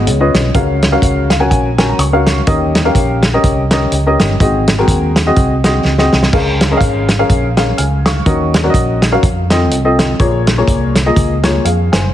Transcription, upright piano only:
0.06 0.51 C#3 medium
0.20 0.46 C#4 medium
0.20 0.46 F4 medium
0.20 0.46 B4 medium
0.20 0.46 D#5 medium
0.54 1.26 C#3 medium
0.54 0.84 C#4 medium
0.54 0.84 F#4 medium
0.54 0.84 A#4 medium
0.54 0.84 F5 medium
0.92 1.29 C#4 medium
0.92 1.29 F#4 medium
0.92 1.29 A#4 medium
0.92 1.28 F5 medium
1.30 1.40 F5 medium
1.40 1.67 C#4 medium
1.40 1.67 F#4 medium
1.40 1.67 A#4 medium
1.40 1.50 F#5 medium
1.40 1.48 G#5 medium
1.50 1.77 G#5 medium
1.78 2.01 C#4 medium
1.78 2.01 F#4 medium
1.78 2.01 A#4 medium
1.78 2.01 G#5 medium
1.89 1.98 A#5 medium
1.99 2.44 C#6 medium
2.13 2.39 C#4 medium
2.13 2.39 F#4 medium
2.13 2.39 A#4 medium
2.13 2.39 F5 medium
2.47 3.19 D#3 medium
2.47 2.76 C#4 medium
2.47 2.77 G4 medium
2.47 2.77 A#4 medium
2.47 2.77 D#5 medium
2.85 3.22 C#4 medium
2.85 3.21 G4 medium
2.85 3.22 A#4 medium
2.85 3.22 F5 medium
3.34 3.60 C#4 medium
3.34 3.60 G4 medium
3.34 3.60 A#4 medium
3.34 3.60 D#5 medium
3.72 3.95 C#4 medium
3.72 3.95 G4 medium
3.72 3.95 A#4 medium
3.72 3.95 D#5 medium
4.06 4.32 C#4 medium
4.06 4.32 G4 medium
4.06 4.32 A#4 medium
4.06 4.32 D#5 medium
4.41 5.12 G#2 medium
4.41 4.70 C4 medium
4.41 4.70 F#4 medium
4.41 4.70 G#4 medium
4.41 4.70 D#5 medium
4.78 5.15 C4 medium
4.78 5.15 F#4 medium
4.78 5.15 G#4 medium
4.78 5.15 A#4 medium
5.27 5.53 C4 medium
5.27 5.53 F#4 medium
5.27 5.53 G#4 medium
5.27 5.53 D#5 loud
5.64 5.87 C4 medium
5.64 5.87 F#4 medium
5.64 5.87 G#4 medium
5.64 5.87 D#5 medium
5.99 6.24 C4 medium
5.99 6.24 F#4 medium
5.99 6.24 G#4 medium
5.99 6.24 D#5 medium
6.33 7.05 C#3 medium
6.33 6.62 C#4 medium
6.33 6.63 G#4 medium
6.33 6.63 A#4 medium
6.33 6.63 F5 medium
6.71 7.08 C#4 medium
6.71 7.07 G#4 medium
6.71 7.08 A#4 medium
6.71 6.76 D#5 medium
6.77 7.10 F5 medium
7.19 7.46 C#4 medium
7.19 7.46 G#4 medium
7.19 7.46 A#4 medium
7.19 7.46 F5 medium
7.57 7.80 C#4 medium
7.57 7.80 G#4 medium
7.57 7.80 A#4 medium
7.57 7.78 F5 medium
7.78 8.04 G#5 soft
7.78 8.04 F6 medium
8.06 8.52 F5 soft
8.06 8.52 C#6 medium
8.26 8.98 D#3 medium
8.26 8.56 C#4 medium
8.26 8.56 F#4 medium
8.26 8.56 A#4 medium
8.26 8.56 D#5 medium
8.64 9.01 C#4 medium
8.64 9.01 F#4 medium
8.64 9.00 A#4 medium
8.64 8.69 D5 medium
8.70 9.04 D#5 medium
9.12 9.23 C#4 medium
9.12 9.23 F#4 medium
9.12 9.23 A#4 medium
9.12 9.23 F5 medium
9.51 9.74 C4 medium
9.51 9.74 F4 medium
9.51 9.74 A4 medium
9.51 9.74 D#5 medium
9.85 10.11 C4 medium
9.85 10.11 F4 medium
9.85 10.11 A4 medium
9.85 10.11 D#5 medium
10.19 10.92 A#2 medium
10.19 10.49 A#3 medium
10.19 10.49 F4 medium
10.19 10.49 G#4 medium
10.19 10.49 C#5 medium
10.58 10.95 A#3 medium
10.58 10.95 F4 medium
10.58 10.95 G#4 medium
10.58 10.95 C#5 medium
11.06 11.33 A#3 medium
11.06 11.33 F4 medium
11.06 11.33 G#4 medium
11.06 11.33 D#5 medium
11.44 11.67 A#3 medium
11.44 11.67 F4 medium
11.44 11.64 G#4 medium
11.44 11.65 C#5 medium
11.65 11.92 G#4 medium
11.65 11.92 F5 medium
11.92 12.14 C5 medium
11.92 12.14 G#5 medium

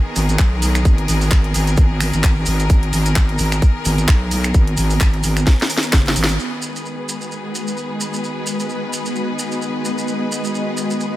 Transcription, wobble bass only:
0.16 0.37 G#1 medium
0.39 0.84 B1 medium
0.85 1.07 G#1 loud
1.08 1.53 G#1 loud
1.54 1.76 G#1 medium
1.78 2.12 G#1 loud
2.14 2.45 G#1 loud
2.47 2.68 G#1 loud
2.70 2.91 G#1 loud
2.93 3.37 G#1 loud
3.39 3.61 G#1 medium
3.85 4.07 G#1 loud
4.08 4.53 B1 medium
4.54 4.76 G#1 loud
4.77 5.22 G#1 loud
5.24 5.45 G#1 medium
5.93 6.14 F#1 loud
6.16 6.37 G#1 medium

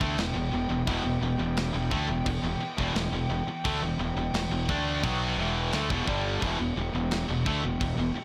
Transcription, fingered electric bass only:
0.01 0.17 D2 loud
0.18 0.34 E1 medium
0.36 0.52 E1 medium
0.53 0.69 E1 medium
0.70 0.86 E1 medium
0.88 1.04 E1 medium
1.05 1.21 E1 medium
1.22 1.38 E1 medium
1.40 1.72 E1 medium
1.75 1.90 E1 medium
1.91 2.08 D2 medium
2.09 2.25 E1 medium
2.26 2.42 E1 medium
2.43 2.59 E1 medium
2.60 muted fingered electric bass stroke soft
2.78 2.94 E1 loud
2.95 3.11 E1 medium
3.12 3.29 E1 medium
3.30 3.46 E1 medium
3.47 muted fingered electric bass stroke soft
3.65 3.81 D2 medium
3.82 3.98 E1 medium
3.99 4.15 E1 medium
4.16 4.33 E1 medium
4.34 4.50 E1 medium
4.51 4.68 E1 medium
4.69 5.01 D2 medium
5.04 5.36 B1 medium
5.38 5.70 E1 medium
5.73 5.89 D2 medium
5.91 6.06 E1 medium
6.08 6.40 G1 medium
6.42 6.58 E1 medium
6.60 6.76 E1 medium
6.77 6.93 E1 medium
6.94 7.26 E1 medium
7.29 7.45 E1 medium
7.46 7.62 D2 medium
7.64 7.80 E1 medium
7.81 7.97 E1 medium
7.98 8.14 E1 medium
8.16 muted fingered electric bass stroke soft

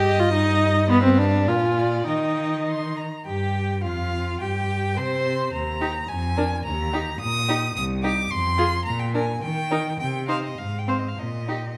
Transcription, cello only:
0.00 1.49 G2 medium
1.47 2.07 A#2 medium
2.07 3.04 D#3 soft
3.27 3.86 G2 medium
3.85 4.42 F2 medium
4.42 5.00 G2 medium
4.98 5.53 C3 medium
5.54 6.00 D#2 medium
6.10 6.57 F2 medium
6.66 7.12 D#2 medium
7.21 7.67 A#2 medium
7.76 8.22 C2 medium
8.31 8.77 F2 medium
8.87 9.34 A#2 medium
9.43 9.90 D#3 medium
10.00 10.48 C3 medium
10.58 11.08 G#2 medium
11.18 11.69 A#2 soft

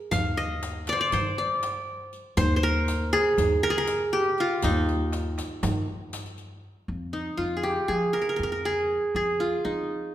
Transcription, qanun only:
0.00 0.25 A#4 medium
0.11 1.00 F5 loud
0.37 0.95 D#5 medium
0.89 1.13 C5 medium
0.89 1.00 D5 medium
1.01 1.38 D5 medium
1.13 2.19 C5 medium
1.38 2.37 D5 medium
2.37 2.56 C5 loud
2.56 3.62 C5 medium
2.63 3.63 A#4 loud
3.13 3.70 G#4 loud
3.63 3.77 A#4 loud
3.70 4.19 G#4 medium
3.78 4.91 A#4 loud
4.13 5.39 G4 medium
4.40 5.75 F4 medium
4.64 6.35 D#4 medium
7.13 8.57 D#4 medium
7.37 8.72 F4 medium
7.57 7.69 G#4 medium
7.63 7.94 G4 medium
7.88 8.65 G#4 medium
8.13 8.21 A#4 medium
8.22 8.29 A#4 medium
8.29 8.36 A#4 medium
8.36 8.43 A#4 medium
8.43 8.52 A#4 medium
8.52 9.65 A#4 medium
8.65 9.15 G#4 medium
9.16 10.15 G#4 medium
9.40 10.15 F4 medium
9.65 10.15 D#4 medium

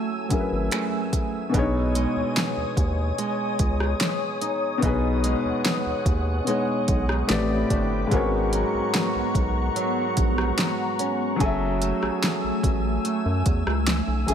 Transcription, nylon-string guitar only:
0.00 1.75 F#3 medium
0.00 0.71 A3 medium
0.00 0.30 E4 medium
0.00 0.73 G#4 medium
0.31 0.71 E4 medium
0.72 1.62 A3 medium
0.72 1.54 E4 medium
0.72 4.23 G#4 medium
1.54 4.81 B2 medium
1.54 4.40 D#4 medium
1.95 3.17 G#3 medium
3.18 5.23 G#3 medium
4.42 4.82 D#4 medium
4.83 7.29 B2 medium
4.83 7.38 D#4 medium
5.24 6.46 G#3 medium
6.47 7.38 G#3 medium
7.29 8.11 A2 medium
7.71 8.12 D4 medium
8.12 11.40 G#2 medium
8.12 10.99 C#4 medium
8.53 9.76 F#3 medium
9.76 11.40 F#3 medium
10.99 14.34 C#4 medium
11.40 14.34 F#3 medium
11.40 14.28 G#4 medium
11.81 13.04 A3 medium
13.05 14.34 A3 medium
14.28 14.34 G#4 medium

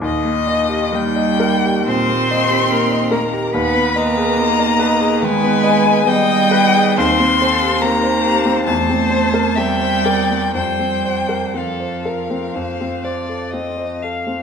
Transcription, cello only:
0.03 0.94 D#3 medium
0.93 1.86 G3 medium
1.87 3.14 C4 loud
3.13 3.53 A#3 medium
3.53 3.94 B3 medium
3.97 5.25 A#3 loud
5.24 6.06 G#3 loud
6.07 6.99 G3 loud
6.98 7.83 C4 medium
7.82 8.66 A#3 loud
8.67 9.60 A3 medium
9.58 10.55 G3 medium
10.55 11.56 G3 medium
11.55 14.03 F3 medium

